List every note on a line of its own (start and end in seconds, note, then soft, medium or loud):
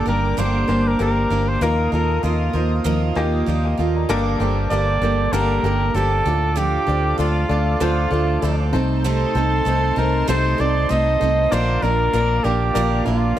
0.00 1.63 G2 medium
0.00 1.63 D3 medium
0.00 0.07 A#3 medium
0.00 4.05 A#3 medium
0.00 0.07 D4 medium
0.00 0.08 G4 medium
0.00 1.63 A4 medium
0.00 0.08 A#4 medium
0.00 1.58 D5 medium
0.00 1.57 G5 medium
0.00 1.59 D6 medium
0.06 0.32 G1 medium
0.06 0.37 G3 soft
0.06 0.35 A#3 medium
0.06 0.37 A#3 soft
0.06 0.38 D4 soft
0.06 0.35 D4 medium
0.06 0.35 G4 medium
0.06 0.37 A#4 medium
0.06 0.36 A#4 medium
0.06 0.40 A#4 medium
0.37 0.63 G1 medium
0.37 0.68 G2 medium
0.37 0.69 D3 medium
0.37 0.69 G3 medium
0.37 0.66 A#3 medium
0.37 0.69 A#3 medium
0.37 0.66 D4 medium
0.37 0.68 D4 loud
0.37 0.66 G4 medium
0.37 0.66 A#4 medium
0.37 0.66 A#4 loud
0.37 0.89 C5 loud
0.68 0.94 G1 medium
0.68 0.98 G3 soft
0.68 0.97 A#3 medium
0.68 0.99 A#3 soft
0.68 0.97 D4 medium
0.68 1.00 D4 medium
0.68 0.97 G4 medium
0.68 0.99 A#4 medium
0.68 0.97 C5 loud
0.88 1.00 A#4 medium
0.99 1.25 G1 medium
0.99 1.30 G3 medium
0.99 1.28 A#3 medium
0.99 1.31 A#3 medium
0.99 1.28 D4 medium
0.99 1.30 D4 medium
0.99 1.28 G4 medium
0.99 1.28 A#4 medium
0.99 1.50 A#4 medium
0.99 1.29 A#4 medium
1.30 1.56 G1 medium
1.30 1.61 G3 soft
1.30 1.59 A#3 medium
1.30 1.61 A#3 medium
1.30 1.59 D4 medium
1.30 1.62 D4 medium
1.30 1.59 G4 medium
1.30 1.61 A#4 medium
1.30 1.59 C5 medium
1.48 1.64 C5 medium
1.61 1.87 D#2 medium
1.61 2.51 A#2 medium
1.61 1.92 D#3 medium
1.61 1.93 F3 medium
1.61 1.90 A#3 medium
1.61 1.93 A#3 medium
1.61 1.90 D#4 medium
1.61 1.90 F4 medium
1.61 1.92 F4 medium
1.61 1.90 A#4 loud
1.61 1.93 A#4 loud
1.61 1.91 A#4 medium
1.61 4.07 D#5 medium
1.61 4.06 F5 medium
1.61 4.07 D#6 medium
1.92 2.18 D#2 medium
1.92 2.21 A#3 medium
1.92 2.23 A#3 soft
1.92 2.21 D#4 medium
1.92 2.21 F4 medium
1.92 2.24 F4 medium
1.92 2.21 A4 medium
1.92 2.23 A#4 medium
1.92 2.22 A#4 medium
2.23 2.49 D#2 medium
2.23 2.54 F3 medium
2.23 2.51 A#3 medium
2.23 2.55 A#3 medium
2.23 2.52 D#4 medium
2.23 2.52 F4 medium
2.23 2.82 F4 medium
2.23 2.54 F4 medium
2.23 2.52 A#4 medium
2.53 2.79 D#2 medium
2.53 2.82 A#3 medium
2.53 2.84 A#3 soft
2.53 2.83 D#4 medium
2.53 2.83 F4 medium
2.53 2.85 F4 soft
2.53 2.85 A#4 medium
2.53 2.83 C5 medium
2.84 3.11 D#2 medium
2.84 3.16 D#3 medium
2.84 3.16 F3 medium
2.84 3.13 A#3 medium
2.84 3.16 A#3 medium
2.84 3.14 D#4 medium
2.84 3.14 F4 medium
2.84 3.16 F4 medium
2.84 3.14 A#4 medium
2.84 3.14 A#4 loud
3.15 3.42 D#2 medium
3.15 3.44 A#3 loud
3.15 3.46 A#3 soft
3.15 3.45 D#4 loud
3.15 3.45 F4 loud
3.15 3.47 F4 medium
3.15 3.45 G4 loud
3.15 3.47 A#4 medium
3.46 3.73 D#2 medium
3.46 3.78 F3 medium
3.46 3.78 A#3 medium
3.46 3.64 F4 soft
3.46 3.78 F4 medium
3.46 3.76 A#4 medium
3.46 3.64 D5 medium
3.65 3.78 G4 medium
3.65 3.78 D#5 medium
3.77 4.04 D#2 medium
3.77 4.09 A#3 soft
3.77 4.10 F4 medium
3.77 3.95 A4 medium
3.77 4.09 A#4 medium
3.77 3.95 F5 medium
3.96 4.26 D5 medium
3.96 4.25 A#5 medium
4.08 4.35 G1 medium
4.08 4.40 G2 medium
4.08 4.98 G2 medium
4.08 4.40 D3 medium
4.08 4.98 D3 medium
4.08 4.40 G3 medium
4.08 6.23 A#3 medium
4.08 4.37 A#3 loud
4.08 4.41 A#3 medium
4.08 4.38 D4 loud
4.08 4.38 G4 loud
4.08 4.40 G4 medium
4.08 4.38 A4 loud
4.08 4.39 A4 medium
4.08 4.38 A#4 loud
4.08 6.23 G5 medium
4.08 6.23 A5 medium
4.08 8.69 D6 medium
4.40 4.65 G1 loud
4.40 4.69 G3 soft
4.40 4.68 A#3 medium
4.40 4.70 A#3 medium
4.40 4.68 D4 medium
4.40 4.68 G4 medium
4.40 4.71 G4 medium
4.40 4.71 A4 medium
4.40 4.68 A4 medium
4.40 4.69 C5 medium
4.70 4.96 G1 loud
4.70 5.02 G3 medium
4.70 4.99 A#3 medium
4.70 5.02 A#3 medium
4.70 4.99 D4 medium
4.70 4.99 G4 medium
4.70 5.02 G4 medium
4.70 4.99 A4 medium
4.70 5.00 A4 medium
4.70 5.00 A#4 medium
4.70 5.34 D5 loud
5.01 5.27 G1 medium
5.01 5.33 G3 soft
5.01 5.30 A#3 medium
5.01 5.33 A#3 medium
5.01 5.30 D4 medium
5.01 5.30 G4 medium
5.01 5.33 G4 medium
5.01 5.33 A4 medium
5.01 5.31 A4 medium
5.01 5.31 A#4 medium
5.32 5.58 G1 medium
5.32 5.64 G2 medium
5.32 5.64 D3 medium
5.32 5.64 G3 medium
5.32 5.61 A#3 medium
5.32 5.64 A#3 loud
5.32 5.61 D4 medium
5.32 5.61 G4 medium
5.32 5.64 G4 medium
5.32 5.61 A4 medium
5.32 5.63 A4 loud
5.32 5.97 A#4 loud
5.32 5.61 A#4 loud
5.63 5.89 G1 medium
5.63 5.93 G3 soft
5.63 5.92 A#3 medium
5.63 5.94 A#3 medium
5.63 5.92 D4 medium
5.63 5.92 G4 medium
5.63 5.95 G4 medium
5.63 5.95 A4 medium
5.63 5.92 A4 medium
5.63 5.92 A#4 medium
5.94 6.20 G1 medium
5.94 6.25 G3 medium
5.94 6.23 A#3 medium
5.94 6.26 A#3 medium
5.94 6.23 D4 medium
5.94 6.23 G4 medium
5.94 6.27 G4 medium
5.94 6.59 A4 loud
5.94 6.23 A4 medium
5.94 6.24 A4 medium
5.94 6.23 C5 medium
6.24 6.76 D2 loud
6.24 7.15 A2 medium
6.24 6.82 A3 medium
6.24 6.82 D4 medium
6.24 6.82 F4 medium
6.24 6.56 F4 medium
6.24 8.70 A4 medium
6.24 6.56 A4 medium
6.24 6.82 A4 medium
6.24 8.70 D5 medium
6.24 6.83 D5 medium
6.24 8.70 F5 medium
6.28 6.56 D4 soft
6.56 6.87 D3 medium
6.56 6.87 F3 medium
6.56 6.88 D4 medium
6.56 6.87 F4 medium
6.56 7.19 G4 loud
6.56 6.85 A4 medium
6.87 7.13 D2 medium
6.87 7.16 A3 medium
6.87 7.16 D4 medium
6.87 7.18 D4 medium
6.87 7.19 F4 soft
6.87 7.16 F4 medium
6.87 7.18 A4 medium
6.87 7.16 A4 medium
6.87 7.16 C5 medium
7.18 7.44 D2 medium
7.18 7.49 F3 medium
7.18 7.47 A3 medium
7.18 7.47 D4 medium
7.18 7.50 D4 medium
7.18 7.47 F4 medium
7.18 7.77 F4 medium
7.18 7.50 F4 medium
7.18 7.47 A4 medium
7.18 7.48 A4 medium
7.18 7.47 D5 medium
7.49 7.75 D2 medium
7.49 7.77 A3 medium
7.49 7.77 D4 medium
7.49 7.80 D4 soft
7.49 7.77 F4 medium
7.49 7.81 F4 medium
7.49 7.77 A4 medium
7.49 7.80 A4 medium
7.49 7.78 D5 medium
7.80 8.06 D2 medium
7.80 8.11 D3 medium
7.80 8.11 F3 loud
7.80 8.09 A3 medium
7.80 8.09 D4 medium
7.80 8.12 D4 loud
7.80 8.09 F4 medium
7.80 8.69 F4 medium
7.80 8.11 F4 loud
7.80 8.09 A4 medium
7.80 8.09 C5 loud
8.11 8.37 D2 medium
8.11 8.39 A3 medium
8.11 8.39 D4 medium
8.11 8.42 D4 medium
8.11 8.39 F4 medium
8.11 8.42 F4 medium
8.11 8.42 A4 medium
8.11 8.40 A4 medium
8.11 8.40 D5 medium
8.42 8.75 D2 loud
8.42 8.73 F3 medium
8.42 8.70 A3 medium
8.42 8.70 D4 medium
8.42 8.73 D4 medium
8.42 8.70 F4 medium
8.42 8.74 F4 medium
8.42 8.70 A4 medium
8.42 8.72 A4 medium
8.42 8.70 D5 medium
8.73 9.24 C2 medium
8.73 9.62 C3 medium
8.73 9.29 A3 medium
8.73 9.29 C4 medium
8.73 9.04 C4 medium
8.73 9.29 D#4 medium
8.73 11.49 D#4 medium
8.73 9.05 D#4 medium
8.73 9.04 A4 medium
8.73 9.29 A4 medium
8.73 9.29 C5 loud
8.73 11.49 C5 medium
8.73 11.49 A5 medium
8.73 11.49 C6 medium
9.04 9.35 C3 medium
9.04 9.35 A3 medium
9.04 9.36 C4 medium
9.04 9.35 D#4 medium
9.04 10.00 A4 loud
9.04 9.34 A4 medium
9.35 9.60 C2 loud
9.35 9.63 A3 medium
9.35 9.63 C4 medium
9.35 9.65 C4 medium
9.35 9.63 D#4 medium
9.35 9.66 D#4 medium
9.35 9.66 A4 medium
9.35 9.63 A4 medium
9.35 9.63 C5 medium
9.65 9.91 C2 loud
9.65 9.96 A3 medium
9.65 9.94 A3 medium
9.65 9.97 C4 medium
9.65 9.94 C4 medium
9.65 9.94 D#4 medium
9.65 9.97 D#4 medium
9.65 9.94 A4 medium
9.65 9.95 A4 medium
9.65 9.94 C5 medium
9.96 10.22 C2 medium
9.96 10.25 A3 medium
9.96 10.25 C4 medium
9.96 10.27 C4 soft
9.96 10.25 D#4 medium
9.96 10.28 D#4 medium
9.96 10.27 A4 medium
9.96 10.25 A4 medium
9.96 10.28 A#4 loud
9.96 10.25 C5 medium
10.28 10.53 C2 loud
10.28 10.58 C3 loud
10.28 10.59 A3 loud
10.28 10.56 A3 medium
10.28 10.56 C4 medium
10.28 10.59 C4 loud
10.28 10.56 D#4 medium
10.28 10.59 D#4 loud
10.28 10.56 A4 medium
10.28 10.57 A4 loud
10.28 10.56 C5 loud
10.28 10.62 C5 loud
10.58 10.84 C2 medium
10.58 10.87 A3 medium
10.58 10.87 C4 medium
10.58 10.89 C4 soft
10.58 10.87 D#4 medium
10.58 10.90 D#4 medium
10.58 10.89 A4 medium
10.58 10.87 A4 medium
10.58 10.87 C5 medium
10.58 10.92 D5 loud
10.89 11.15 C2 medium
10.89 11.20 A3 medium
10.89 11.17 A3 medium
10.89 11.18 C4 medium
10.89 11.21 C4 medium
10.89 11.18 D#4 medium
10.89 11.21 D#4 medium
10.89 11.18 A4 medium
10.89 11.19 A4 medium
10.89 11.18 C5 medium
10.89 11.54 D#5 loud
11.20 11.46 C2 loud
11.20 11.48 A3 medium
11.20 11.48 C4 medium
11.20 11.53 C4 soft
11.20 11.48 D#4 medium
11.20 11.52 D#4 medium
11.20 11.48 A4 medium
11.20 11.51 A4 medium
11.20 11.49 C5 medium
11.51 11.77 A#1 loud
11.51 11.82 A#2 medium
11.51 11.82 D3 medium
11.51 11.83 F3 medium
11.51 11.79 A#3 medium
11.51 13.39 A#3 medium
11.51 11.83 A#3 medium
11.51 11.79 D4 medium
11.51 11.82 D4 medium
11.51 11.79 F4 medium
11.51 11.79 A#4 medium
11.51 11.81 A#4 medium
11.51 11.84 C5 loud
11.51 11.79 D5 loud
11.51 13.39 D5 medium
11.51 13.39 F5 medium
11.51 13.39 D6 medium
11.82 12.08 A#1 loud
11.82 12.12 F3 medium
11.82 12.10 A#3 medium
11.82 12.13 A#3 medium
11.82 12.10 D4 medium
11.82 12.14 D4 medium
11.82 12.10 F4 medium
11.82 12.13 A#4 medium
11.82 12.10 A#4 medium
11.82 12.46 A#4 loud
11.82 12.10 D5 medium
12.13 12.39 A#1 loud
12.13 12.44 F3 medium
12.13 12.41 A#3 medium
12.13 12.44 A#3 medium
12.13 12.41 D4 medium
12.13 12.44 D4 medium
12.13 12.41 F4 medium
12.13 12.41 A#4 medium
12.13 12.43 A#4 medium
12.13 12.41 D5 medium
12.44 12.70 A#1 medium
12.44 12.75 F3 soft
12.44 12.72 A#3 medium
12.44 12.75 A#3 soft
12.44 12.72 D4 medium
12.44 12.75 D4 medium
12.44 12.72 F4 medium
12.44 13.06 G4 loud
12.44 12.75 A#4 medium
12.44 12.72 A#4 medium
12.44 12.72 D5 medium
12.74 13.01 A#1 loud
12.74 13.06 A#2 medium
12.74 13.06 D3 medium
12.74 13.06 F3 medium
12.74 13.03 A#3 medium
12.74 13.06 A#3 medium
12.74 13.03 D4 medium
12.74 13.06 D4 medium
12.74 13.03 F4 medium
12.74 13.03 A#4 medium
12.74 13.04 A#4 loud
12.74 13.03 D5 loud
13.05 13.32 A#1 medium
13.05 13.35 F3 soft
13.05 13.33 A#3 medium
13.05 13.37 A#3 medium
13.05 13.34 D4 medium
13.05 13.37 D4 medium
13.05 13.34 F4 medium
13.05 13.39 F4 medium
13.05 13.34 A#4 medium
13.05 13.37 A#4 medium
13.05 13.34 D5 medium
13.36 13.39 A#3 medium